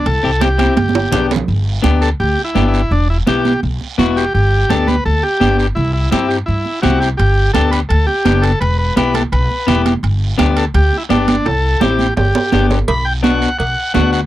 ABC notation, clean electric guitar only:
X:1
M:4/4
L:1/8
Q:1/4=168
K:G
V:1 name="Clean electric guitar"
z [CEG] [CEG] [CEG] z2 [B,DG] z | z2 [B,DG] z3 [B,DG] z | z2 [B,EG] z3 [B,EF] z | z2 [B,DG] z3 [B,DG] z |
z2 [CEG] z3 [CEG] z | z2 [B,DG] z3 [B,DG] z | z2 [B,EG] z3 [B,EG] z | z2 [B,DG] z3 [B,DG] z |
z2 [CEG] z3 [B,DG] z | z2 [B,DF] z3 [B,DF] z |]